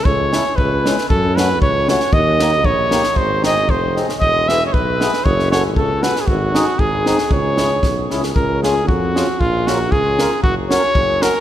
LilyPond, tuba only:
\new Staff \with { instrumentName = "Tuba" } { \clef bass \time 2/4 \key cis \minor \tempo 4 = 116 cis,4 cis,4 | fis,4 cis,4 | dis,4 ais,,4 | gis,,4 eis,,4 |
e,,4 b,,4 | fis,,4 cis,4 | gis,,4 gis,,4 | cis,4 b,,8 cis,8 |
\key des \major des,4 f,4 | bes,,4 des,4 | ges,,4 ges,,4 | }